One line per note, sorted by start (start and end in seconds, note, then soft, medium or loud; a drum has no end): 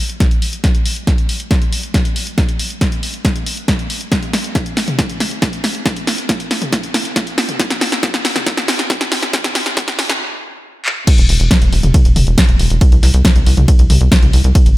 0.09 closed hi-hat soft
0.20 kick loud
0.20 snare medium
0.20 closed hi-hat medium
0.31 closed hi-hat medium
0.42 open hi-hat medium
0.53 closed hi-hat medium
0.64 kick loud
0.64 snare medium
0.64 closed hi-hat medium
0.75 closed hi-hat soft
0.86 open hi-hat loud
0.96 closed hi-hat soft
1.07 kick loud
1.07 snare medium
1.07 closed hi-hat medium
1.18 closed hi-hat soft
1.29 open hi-hat medium
1.40 closed hi-hat medium
1.51 kick loud
1.51 snare medium
1.51 closed hi-hat medium
1.62 closed hi-hat soft
1.73 open hi-hat loud
1.83 closed hi-hat soft
1.94 kick loud
1.94 snare medium
1.94 closed hi-hat medium
2.05 closed hi-hat soft
2.16 open hi-hat loud
2.27 closed hi-hat soft
2.38 kick loud
2.38 snare medium
2.38 closed hi-hat medium
2.49 closed hi-hat soft
2.59 open hi-hat loud
2.70 closed hi-hat soft
2.81 kick loud
2.81 snare medium
2.81 closed hi-hat medium
2.92 closed hi-hat soft
3.03 open hi-hat medium
3.14 closed hi-hat soft
3.25 kick loud
3.25 snare medium
3.25 closed hi-hat medium
3.36 closed hi-hat medium
3.46 open hi-hat loud
3.57 closed hi-hat soft
3.68 kick loud
3.68 snare medium
3.68 closed hi-hat medium
3.79 closed hi-hat soft
3.90 open hi-hat loud
4.01 closed hi-hat soft
4.12 kick loud
4.12 snare medium
4.12 closed hi-hat medium
4.23 closed hi-hat soft
4.33 snare medium
4.33 open hi-hat loud
4.44 closed hi-hat soft
4.55 kick loud
4.55 snare medium
4.55 closed hi-hat medium
4.66 closed hi-hat soft
4.77 snare medium
4.77 open hi-hat medium
4.88 closed hi-hat soft
4.88 mid tom medium
4.99 kick loud
4.99 snare medium
4.99 closed hi-hat medium
5.09 closed hi-hat soft
5.20 snare medium
5.20 open hi-hat loud
5.31 closed hi-hat soft
5.42 kick loud
5.42 snare medium
5.42 closed hi-hat medium
5.53 closed hi-hat soft
5.64 snare medium
5.64 open hi-hat loud
5.75 closed hi-hat soft
5.86 kick loud
5.86 snare medium
5.86 closed hi-hat medium
5.96 closed hi-hat medium
6.07 snare medium
6.07 open hi-hat loud
6.18 closed hi-hat medium
6.29 kick loud
6.29 snare medium
6.29 closed hi-hat medium
6.40 closed hi-hat medium
6.51 snare medium
6.51 open hi-hat medium
6.62 closed hi-hat medium
6.62 mid tom medium
6.73 kick loud
6.73 snare medium
6.73 closed hi-hat medium
6.83 closed hi-hat medium
6.94 snare medium
6.94 open hi-hat loud
7.05 closed hi-hat soft
7.16 kick loud
7.16 snare medium
7.16 closed hi-hat medium
7.27 closed hi-hat medium
7.38 snare medium
7.38 open hi-hat medium
7.49 closed hi-hat medium
7.49 mid tom medium
7.59 kick loud
7.59 snare medium
7.59 closed hi-hat medium
7.70 snare medium
7.70 closed hi-hat medium
7.81 snare medium
7.81 open hi-hat loud
7.92 snare medium
7.92 closed hi-hat medium
8.03 kick loud
8.03 snare medium
8.03 closed hi-hat medium
8.14 snare medium
8.14 closed hi-hat medium
8.25 snare medium
8.25 open hi-hat medium
8.36 snare medium
8.36 closed hi-hat medium
8.36 mid tom medium
8.46 kick loud
8.46 snare medium
8.46 closed hi-hat loud
8.57 snare medium
8.57 closed hi-hat medium
8.68 snare loud
8.68 open hi-hat loud
8.79 snare medium
8.79 closed hi-hat medium
8.90 kick loud
8.90 snare loud
8.90 closed hi-hat loud
9.01 snare medium
9.01 closed hi-hat medium
9.12 snare loud
9.12 open hi-hat medium
9.23 snare medium
9.23 closed hi-hat medium
9.33 kick loud
9.33 snare loud
9.33 closed hi-hat loud
9.44 snare medium
9.44 closed hi-hat medium
9.44 mid tom medium
9.55 snare loud
9.55 open hi-hat loud
9.66 snare medium
9.66 closed hi-hat medium
9.77 kick loud
9.77 snare loud
9.77 closed hi-hat loud
9.88 snare medium
9.88 closed hi-hat medium
9.99 snare loud
9.99 open hi-hat medium
10.10 snare medium
10.10 closed hi-hat medium
10.10 mid tom medium
10.86 clap loud
11.07 kick loud
11.07 closed hi-hat medium
11.07 crash loud
11.07 ride medium
11.18 11.27 E1 medium
11.18 closed hi-hat medium
11.29 11.38 E1 loud
11.29 open hi-hat loud
11.40 11.49 E1 medium
11.40 closed hi-hat medium
11.51 kick loud
11.51 snare loud
11.51 closed hi-hat loud
11.51 ride medium
11.62 11.70 E1 medium
11.62 closed hi-hat medium
11.72 11.81 E1 loud
11.72 open hi-hat medium
11.83 11.92 E1 medium
11.83 closed hi-hat medium
11.83 mid tom medium
11.94 kick loud
11.94 closed hi-hat medium
11.94 mid tom medium
11.94 ride medium
12.05 12.14 E1 medium
12.05 closed hi-hat medium
12.16 12.25 E1 loud
12.16 open hi-hat loud
12.16 mid tom medium
12.27 12.36 E1 medium
12.27 closed hi-hat medium
12.38 kick loud
12.38 snare loud
12.38 closed hi-hat loud
12.38 ride medium
12.49 12.57 E1 medium
12.49 closed hi-hat medium
12.59 12.68 E1 loud
12.59 open hi-hat medium
12.70 12.79 E1 medium
12.70 closed hi-hat medium
12.81 kick loud
12.81 closed hi-hat medium
12.81 ride medium
12.92 13.01 C2 medium
12.92 closed hi-hat medium
13.03 13.12 C2 loud
13.03 snare soft
13.03 open hi-hat loud
13.14 13.23 C2 loud
13.14 closed hi-hat medium
13.25 kick loud
13.25 snare loud
13.25 closed hi-hat medium
13.25 ride medium
13.36 13.44 C2 medium
13.36 closed hi-hat medium
13.46 13.55 C2 loud
13.46 open hi-hat loud
13.57 13.66 C2 medium
13.57 closed hi-hat medium
13.57 mid tom medium
13.68 kick loud
13.68 closed hi-hat medium
13.68 ride medium
13.79 13.88 C2 medium
13.79 closed hi-hat medium
13.90 13.99 C2 loud
13.90 open hi-hat loud
13.90 mid tom medium
14.01 14.10 C2 medium
14.01 closed hi-hat medium
14.12 kick loud
14.12 snare loud
14.12 closed hi-hat loud
14.12 ride medium
14.23 14.31 C2 medium
14.23 closed hi-hat medium
14.23 mid tom medium
14.33 14.42 C2 loud
14.33 open hi-hat loud
14.44 14.53 C2 medium
14.44 closed hi-hat medium
14.55 kick loud
14.55 closed hi-hat medium
14.55 ride medium
14.66 14.75 G1 medium
14.66 closed hi-hat medium